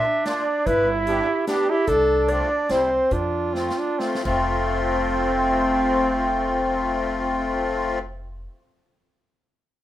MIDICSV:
0, 0, Header, 1, 6, 480
1, 0, Start_track
1, 0, Key_signature, -1, "major"
1, 0, Tempo, 405132
1, 786, Time_signature, 3, 2, 24, 8
1, 2703, Tempo, 421941
1, 4143, Tempo, 460123
1, 7503, Tempo, 469116
1, 10637, End_track
2, 0, Start_track
2, 0, Title_t, "Clarinet"
2, 0, Program_c, 0, 71
2, 0, Note_on_c, 0, 76, 99
2, 308, Note_off_c, 0, 76, 0
2, 315, Note_on_c, 0, 74, 99
2, 791, Note_on_c, 0, 71, 114
2, 809, Note_off_c, 0, 74, 0
2, 1049, Note_off_c, 0, 71, 0
2, 1273, Note_on_c, 0, 67, 90
2, 1713, Note_off_c, 0, 67, 0
2, 1749, Note_on_c, 0, 67, 99
2, 1990, Note_off_c, 0, 67, 0
2, 2025, Note_on_c, 0, 67, 106
2, 2208, Note_off_c, 0, 67, 0
2, 2215, Note_on_c, 0, 69, 114
2, 2714, Note_on_c, 0, 74, 100
2, 2731, Note_off_c, 0, 69, 0
2, 3193, Note_on_c, 0, 72, 105
2, 3210, Note_off_c, 0, 74, 0
2, 3667, Note_on_c, 0, 65, 94
2, 3684, Note_off_c, 0, 72, 0
2, 4877, Note_off_c, 0, 65, 0
2, 4883, Note_on_c, 0, 60, 92
2, 8763, Note_off_c, 0, 60, 0
2, 10637, End_track
3, 0, Start_track
3, 0, Title_t, "Trumpet"
3, 0, Program_c, 1, 56
3, 0, Note_on_c, 1, 62, 86
3, 787, Note_on_c, 1, 64, 105
3, 805, Note_off_c, 1, 62, 0
3, 1738, Note_off_c, 1, 64, 0
3, 1746, Note_on_c, 1, 62, 93
3, 2013, Note_on_c, 1, 64, 104
3, 2031, Note_off_c, 1, 62, 0
3, 2233, Note_on_c, 1, 62, 87
3, 2251, Note_off_c, 1, 64, 0
3, 3180, Note_on_c, 1, 60, 81
3, 3197, Note_off_c, 1, 62, 0
3, 3660, Note_on_c, 1, 62, 76
3, 3677, Note_off_c, 1, 60, 0
3, 4130, Note_on_c, 1, 60, 70
3, 4147, Note_off_c, 1, 62, 0
3, 4395, Note_on_c, 1, 62, 83
3, 4411, Note_off_c, 1, 60, 0
3, 4604, Note_on_c, 1, 60, 71
3, 4619, Note_off_c, 1, 62, 0
3, 4860, Note_off_c, 1, 60, 0
3, 4867, Note_on_c, 1, 60, 81
3, 8755, Note_off_c, 1, 60, 0
3, 10637, End_track
4, 0, Start_track
4, 0, Title_t, "Accordion"
4, 0, Program_c, 2, 21
4, 296, Note_on_c, 2, 58, 59
4, 303, Note_on_c, 2, 62, 61
4, 312, Note_on_c, 2, 65, 72
4, 539, Note_off_c, 2, 58, 0
4, 542, Note_off_c, 2, 62, 0
4, 547, Note_off_c, 2, 65, 0
4, 1265, Note_on_c, 2, 59, 58
4, 1271, Note_on_c, 2, 62, 51
4, 1275, Note_on_c, 2, 67, 67
4, 1500, Note_off_c, 2, 59, 0
4, 1503, Note_off_c, 2, 62, 0
4, 1505, Note_off_c, 2, 67, 0
4, 1748, Note_on_c, 2, 59, 74
4, 1752, Note_on_c, 2, 62, 59
4, 1760, Note_on_c, 2, 67, 78
4, 1982, Note_off_c, 2, 59, 0
4, 1983, Note_off_c, 2, 62, 0
4, 1987, Note_off_c, 2, 67, 0
4, 2716, Note_on_c, 2, 57, 68
4, 2722, Note_on_c, 2, 60, 60
4, 2726, Note_on_c, 2, 65, 73
4, 2939, Note_off_c, 2, 57, 0
4, 2942, Note_off_c, 2, 60, 0
4, 2944, Note_off_c, 2, 65, 0
4, 3167, Note_on_c, 2, 55, 65
4, 3175, Note_on_c, 2, 60, 62
4, 3182, Note_on_c, 2, 64, 68
4, 3404, Note_off_c, 2, 55, 0
4, 3408, Note_off_c, 2, 60, 0
4, 3411, Note_off_c, 2, 64, 0
4, 4140, Note_on_c, 2, 60, 53
4, 4142, Note_on_c, 2, 57, 64
4, 4153, Note_on_c, 2, 65, 67
4, 4371, Note_off_c, 2, 60, 0
4, 4372, Note_off_c, 2, 57, 0
4, 4377, Note_off_c, 2, 65, 0
4, 4603, Note_on_c, 2, 57, 72
4, 4613, Note_on_c, 2, 60, 68
4, 4617, Note_on_c, 2, 65, 81
4, 4845, Note_off_c, 2, 57, 0
4, 4848, Note_off_c, 2, 65, 0
4, 4850, Note_off_c, 2, 60, 0
4, 4863, Note_on_c, 2, 65, 85
4, 4867, Note_on_c, 2, 60, 86
4, 4868, Note_on_c, 2, 57, 91
4, 8753, Note_off_c, 2, 65, 0
4, 8755, Note_off_c, 2, 57, 0
4, 8755, Note_off_c, 2, 60, 0
4, 10637, End_track
5, 0, Start_track
5, 0, Title_t, "Upright bass"
5, 0, Program_c, 3, 32
5, 789, Note_on_c, 3, 31, 101
5, 1409, Note_off_c, 3, 31, 0
5, 2224, Note_on_c, 3, 36, 102
5, 2847, Note_off_c, 3, 36, 0
5, 3184, Note_on_c, 3, 36, 91
5, 3491, Note_off_c, 3, 36, 0
5, 3650, Note_on_c, 3, 41, 99
5, 4290, Note_off_c, 3, 41, 0
5, 4875, Note_on_c, 3, 29, 91
5, 9223, Note_off_c, 3, 29, 0
5, 10637, End_track
6, 0, Start_track
6, 0, Title_t, "Drums"
6, 303, Note_on_c, 9, 38, 62
6, 303, Note_on_c, 9, 42, 47
6, 421, Note_off_c, 9, 38, 0
6, 421, Note_off_c, 9, 42, 0
6, 787, Note_on_c, 9, 42, 38
6, 788, Note_on_c, 9, 36, 68
6, 905, Note_off_c, 9, 42, 0
6, 907, Note_off_c, 9, 36, 0
6, 1265, Note_on_c, 9, 42, 45
6, 1383, Note_off_c, 9, 42, 0
6, 1745, Note_on_c, 9, 38, 62
6, 1745, Note_on_c, 9, 42, 44
6, 1864, Note_off_c, 9, 38, 0
6, 1864, Note_off_c, 9, 42, 0
6, 2219, Note_on_c, 9, 42, 43
6, 2224, Note_on_c, 9, 36, 60
6, 2337, Note_off_c, 9, 42, 0
6, 2342, Note_off_c, 9, 36, 0
6, 2706, Note_on_c, 9, 42, 45
6, 2819, Note_off_c, 9, 42, 0
6, 3171, Note_on_c, 9, 38, 56
6, 3171, Note_on_c, 9, 42, 42
6, 3285, Note_off_c, 9, 38, 0
6, 3285, Note_off_c, 9, 42, 0
6, 3646, Note_on_c, 9, 42, 36
6, 3651, Note_on_c, 9, 36, 61
6, 3760, Note_off_c, 9, 42, 0
6, 3765, Note_off_c, 9, 36, 0
6, 4148, Note_on_c, 9, 38, 46
6, 4252, Note_off_c, 9, 38, 0
6, 4300, Note_on_c, 9, 38, 41
6, 4404, Note_off_c, 9, 38, 0
6, 4612, Note_on_c, 9, 38, 49
6, 4717, Note_off_c, 9, 38, 0
6, 4771, Note_on_c, 9, 38, 66
6, 4876, Note_off_c, 9, 38, 0
6, 4877, Note_on_c, 9, 49, 67
6, 4879, Note_on_c, 9, 36, 70
6, 4981, Note_off_c, 9, 49, 0
6, 4983, Note_off_c, 9, 36, 0
6, 10637, End_track
0, 0, End_of_file